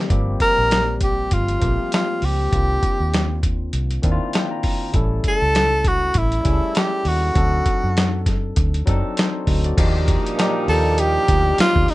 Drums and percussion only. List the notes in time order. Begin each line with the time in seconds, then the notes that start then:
0.10 kick, closed hi-hat
0.40 kick, closed hi-hat
0.71 snare, closed hi-hat
1.01 kick, closed hi-hat
1.31 kick, closed hi-hat
1.48 closed hi-hat
1.62 kick, closed hi-hat
1.92 snare, closed hi-hat
2.22 open hi-hat
2.53 kick, closed hi-hat
2.83 kick, closed hi-hat
3.14 snare, closed hi-hat
3.43 kick, closed hi-hat
3.73 closed hi-hat
3.91 closed hi-hat
4.03 kick, closed hi-hat
4.33 snare, closed hi-hat
4.63 kick, open hi-hat
4.94 kick, closed hi-hat
5.24 kick, closed hi-hat
5.55 snare, closed hi-hat
5.84 kick, closed hi-hat
6.14 kick, closed hi-hat
6.32 closed hi-hat
6.45 kick, closed hi-hat
6.75 snare, closed hi-hat
7.05 open hi-hat
7.35 kick, closed hi-hat
7.66 kick, closed hi-hat
7.97 snare, closed hi-hat
8.26 kick, snare, closed hi-hat
8.56 kick, closed hi-hat
8.74 closed hi-hat
8.87 kick, closed hi-hat
9.17 snare, closed hi-hat
9.47 kick, open hi-hat
9.64 closed hi-hat
9.78 kick, closed hi-hat, crash
10.08 kick, closed hi-hat
10.26 closed hi-hat
10.39 snare, closed hi-hat
10.68 open hi-hat
10.98 closed hi-hat
11.28 kick, closed hi-hat
11.58 snare, closed hi-hat
11.76 kick
11.88 open hi-hat